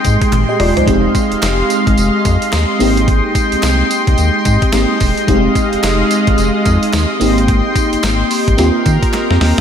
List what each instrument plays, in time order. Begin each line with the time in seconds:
Already playing: analog synth pad G#3 D#5 G5 C6, fm electric piano A#3 C4 D#4 G4
0.05 analog synth bass G#2, kick, closed hi-hat, tambourine
0.22 kick, closed hi-hat
0.32 analog synth bass G#1, clap, closed hi-hat, high tom
0.49 fm electric piano G4 D#5
0.60 analog synth bass E1, fm electric piano F4 D5, mid tom, open hi-hat
0.77 fm electric piano D#4 C5, closed hi-hat, floor tom
0.87 analog synth bass F1, fm electric piano G#3 C4 D#4 G4, analog synth pad D#5 F5, kick, closed hi-hat
1.15 kick, closed hi-hat, tambourine
1.32 analog synth bass F1, closed hi-hat
1.42 analog synth bass F1, snare, clap, closed hi-hat, tambourine
1.70 closed hi-hat, tambourine
1.87 analog synth bass G#1, kick, closed hi-hat
1.98 analog synth bass F1, closed hi-hat, tambourine
2.25 analog synth bass F2, kick, closed hi-hat, tambourine
2.42 closed hi-hat
2.52 analog synth bass D#2, snare, clap, closed hi-hat, tambourine
2.79 analog synth bass G#1, fm electric piano A#3 C4 D#4 G4, analog synth pad G5, open hi-hat, tambourine
2.97 closed hi-hat
3.08 kick, closed hi-hat
3.35 kick, closed hi-hat, tambourine
3.52 analog synth bass C2, closed hi-hat
3.63 analog synth bass C2, snare, clap, closed hi-hat, tambourine
3.91 closed hi-hat, tambourine
4.07 analog synth bass C2, kick, closed hi-hat
4.18 analog synth bass D#2, closed hi-hat, tambourine
4.45 analog synth bass G#2, kick, closed hi-hat, tambourine
4.62 kick, closed hi-hat
4.73 analog synth bass G#1, fm electric piano A#3 C4 D#4 G4, snare, clap, closed hi-hat, tambourine
5.00 analog synth bass E1, kick, open hi-hat, tambourine
5.17 closed hi-hat
5.27 analog synth bass F1, fm electric piano G3 C4 D#4 G4, analog synth pad G#3 F5, kick, closed hi-hat
5.34 fm electric piano G#3
5.55 kick, closed hi-hat, tambourine
5.73 analog synth bass F1, closed hi-hat
5.83 analog synth bass F1, snare, clap, closed hi-hat, tambourine
6.11 closed hi-hat, tambourine
6.27 analog synth bass G#1, kick, closed hi-hat
6.38 analog synth bass F1, closed hi-hat, tambourine
6.65 analog synth bass F2, kick, closed hi-hat, tambourine
6.83 closed hi-hat
6.93 analog synth bass D#2, snare, clap, closed hi-hat, tambourine
7.20 analog synth bass G#1, fm electric piano A#3 C4 D#4 G4, analog synth pad G5 C6, open hi-hat, tambourine
7.38 closed hi-hat
7.48 kick, closed hi-hat
7.76 kick, closed hi-hat, tambourine
7.93 analog synth bass G#1, closed hi-hat
8.03 analog synth bass G#1, snare, clap, closed hi-hat, tambourine
8.31 open hi-hat, tambourine
8.48 analog synth bass G#1, kick, closed hi-hat
8.57 analog synth bass D#2, fm electric piano A#3 C4 F4 G4, analog synth pad A#4, snare, closed hi-hat, tambourine
8.86 analog synth bass D#3, kick, closed hi-hat, tambourine
9.03 kick, closed hi-hat
9.13 snare, clap, closed hi-hat
9.31 analog synth bass F2, snare
9.41 analog synth bass D#2, snare, open hi-hat